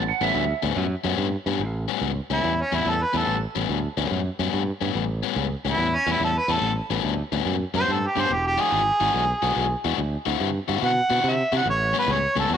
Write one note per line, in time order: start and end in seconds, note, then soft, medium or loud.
0.00 0.11 A1 loud
0.08 0.21 F#5 medium
0.21 0.30 A1 medium
0.21 0.44 A2 medium
0.21 0.44 G3 medium
0.21 0.43 B3 medium
0.21 0.43 C#4 loud
0.21 0.62 E5 loud
0.35 0.52 D2 medium
0.62 0.72 D2 medium
0.62 0.85 A2 medium
0.62 0.85 G3 medium
0.62 0.85 B3 medium
0.62 0.85 C#4 medium
0.76 0.94 F#2 medium
1.04 1.13 F#2 loud
1.04 1.27 A2 medium
1.04 1.27 G3 medium
1.04 1.27 B3 medium
1.04 1.26 C#4 loud
1.18 1.36 G2 medium
1.46 1.61 G2 loud
1.46 1.61 A2 medium
1.46 1.60 G3 medium
1.46 1.60 B3 medium
1.46 1.60 C#4 medium
1.59 1.86 A1 medium
1.88 2.11 A2 medium
1.88 2.11 G3 medium
1.88 2.11 B3 medium
1.88 2.10 C#4 medium
2.01 2.19 C#2 medium
2.30 2.39 C#2 medium
2.30 2.53 A2 medium
2.30 2.53 G3 medium
2.30 2.53 B3 medium
2.30 2.52 C#4 medium
2.30 2.63 E4 medium
2.44 2.62 E2 medium
2.61 2.76 C#4 medium
2.72 2.81 E2 medium
2.72 2.95 A2 medium
2.72 2.95 G3 medium
2.72 2.94 B3 medium
2.72 2.94 C#4 loud
2.72 2.91 E4 medium
2.86 3.03 E2 medium
2.90 3.04 A4 medium
3.02 3.18 B4 medium
3.13 3.22 E2 medium
3.13 3.36 A2 medium
3.13 3.36 G3 medium
3.13 3.36 B3 medium
3.13 3.36 C#4 medium
3.13 3.38 A4 medium
3.27 3.45 A1 loud
3.55 3.64 A1 medium
3.55 3.78 A2 medium
3.55 3.78 G3 medium
3.55 3.78 B3 medium
3.55 3.78 C#4 medium
3.69 3.87 D2 medium
3.97 4.06 D2 medium
3.97 4.20 A2 medium
3.97 4.20 G3 medium
3.97 4.20 B3 medium
3.97 4.19 C#4 medium
4.11 4.29 F#2 medium
4.39 4.48 F#2 medium
4.39 4.62 A2 medium
4.39 4.62 G3 medium
4.39 4.62 B3 medium
4.39 4.62 C#4 loud
4.53 4.71 G2 medium
4.81 4.90 G2 medium
4.81 5.04 A2 medium
4.81 5.04 G3 medium
4.81 5.03 B3 medium
4.81 5.03 C#4 medium
4.95 5.21 A1 loud
5.23 5.46 A2 medium
5.23 5.46 G3 medium
5.23 5.45 B3 medium
5.23 5.45 C#4 loud
5.36 5.54 C#2 medium
5.65 5.73 C#2 medium
5.65 5.88 A2 medium
5.65 5.88 G3 medium
5.65 5.87 B3 medium
5.65 5.87 C#4 medium
5.65 5.97 E4 medium
5.78 5.96 E2 medium
5.95 6.12 C#4 loud
6.07 6.15 E2 medium
6.07 6.30 A2 medium
6.07 6.29 G3 medium
6.07 6.29 B3 medium
6.07 6.29 C#4 medium
6.07 6.22 E4 medium
6.20 6.38 E2 medium
6.24 6.39 A4 medium
6.37 6.53 B4 medium
6.48 6.57 E2 medium
6.48 6.71 A2 medium
6.48 6.71 G3 medium
6.48 6.71 B3 medium
6.48 6.71 C#4 medium
6.48 6.73 A4 medium
6.62 6.80 A1 medium
6.90 6.99 A1 medium
6.90 7.13 A2 medium
6.90 7.13 G3 medium
6.90 7.13 B3 medium
6.90 7.13 C#4 medium
7.03 7.21 D2 medium
7.32 7.41 D2 medium
7.32 7.55 A2 medium
7.32 7.55 G3 medium
7.32 7.55 B3 medium
7.32 7.55 C#4 medium
7.45 7.63 F#2 medium
7.74 7.83 F#2 medium
7.74 7.97 A2 medium
7.74 7.97 G3 medium
7.74 7.97 B3 medium
7.74 7.96 C#4 medium
7.74 7.94 C5 loud
7.88 8.06 G2 medium
7.92 8.08 A4 medium
8.07 8.21 G4 medium
8.16 8.25 G2 medium
8.16 8.30 A2 medium
8.16 8.30 G3 medium
8.16 8.30 B3 medium
8.16 8.30 C#4 medium
8.20 8.35 C5 loud
8.30 8.56 E1 medium
8.30 8.45 G4 medium
8.47 8.62 G4 loud
8.58 8.81 E3 medium
8.58 8.81 G#3 medium
8.58 8.80 D4 medium
8.58 8.80 F#4 medium
8.58 9.81 G#4 loud
8.72 8.90 G#1 medium
9.00 9.09 G#1 medium
9.00 9.23 E3 medium
9.00 9.23 G#3 medium
9.00 9.23 D4 medium
9.00 9.22 F#4 medium
9.14 9.32 B1 medium
9.42 9.51 B1 medium
9.42 9.65 E3 medium
9.42 9.65 G#3 medium
9.42 9.65 D4 medium
9.42 9.64 F#4 loud
9.56 9.74 B1 loud
9.84 9.93 E2 medium
9.84 9.99 E3 medium
9.84 9.99 G#3 medium
9.84 9.98 D4 medium
9.84 9.98 F#4 medium
9.98 10.16 D2 medium
10.26 10.35 D2 medium
10.26 10.49 D3 medium
10.26 10.49 C4 medium
10.26 10.48 E4 loud
10.26 10.48 F#4 loud
10.40 10.58 G2 medium
10.68 10.77 G2 medium
10.68 10.91 D3 medium
10.68 10.91 C4 medium
10.68 10.91 E4 medium
10.68 10.90 F#4 medium
10.82 11.00 B2 medium
10.82 11.30 F#5 loud
11.10 11.19 B2 medium
11.10 11.33 D3 medium
11.10 11.33 C4 medium
11.10 11.32 E4 medium
11.10 11.32 F#4 loud
11.24 11.42 C3 medium
11.29 11.54 E5 loud
11.52 11.61 C3 medium
11.52 11.66 D3 medium
11.52 11.66 C4 medium
11.52 11.66 E4 medium
11.52 11.66 F#4 medium
11.57 11.68 F#5 loud
11.66 11.92 A1 loud
11.70 11.96 C#5 medium
11.93 12.17 A2 medium
11.93 12.16 G3 medium
11.93 12.16 B3 medium
11.93 12.16 C#4 loud
11.99 12.13 B4 loud
12.08 12.26 C#2 medium
12.08 12.37 C#5 loud
12.36 12.45 C#2 loud
12.36 12.57 A2 medium
12.36 12.57 G3 medium
12.36 12.57 B3 medium
12.36 12.57 C#4 loud
12.36 12.51 A4 medium
12.49 12.57 E2 loud
12.49 12.57 F#4 loud